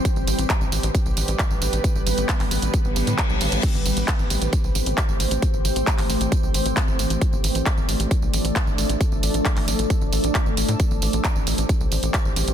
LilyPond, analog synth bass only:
\new Staff \with { instrumentName = "Analog synth bass" } { \clef bass \time 4/4 \key a \minor \tempo 4 = 134 r16 a,,16 a,,16 a,,16 r16 a,,16 a,,16 a,,16 r16 b,,16 a,,16 a,,16 r16 a,,16 a,,16 a,,16 | r16 a,,16 a,,16 a,,16 r16 a,,16 a,,16 a,,16 r16 a,,16 a,,16 a,16 r16 b,,16 a,,16 a,,16 | r16 a,,16 a,,16 a,,16 r16 a,,16 a,,16 a,,16 r16 b,,16 a,,16 a,,16 r16 a,,16 a,,16 a,,16 | r16 a,,16 a,,16 a,,16 r16 a,,16 a,,16 a,,16 r16 b,,16 a,,16 a,,16 r16 a,,16 a,,16 a,,16 |
r16 a,,16 a,,16 a,,16 r16 a,,16 a,,16 a,,16 r16 b,,16 a,,16 a,,16 r16 a,,16 a,,16 a,,16 | r16 a,,16 a,,16 a,,16 r16 a,,16 a,,16 a,,16 r16 a,,16 a,,16 a,,16 r16 a,,16 a,,16 a,16 | r16 a,,16 a,,16 a,,16 r16 a,,16 a,,16 a,,16 r16 b,,16 a,,16 a,,16 r16 a,,16 a,,16 a,,16 | }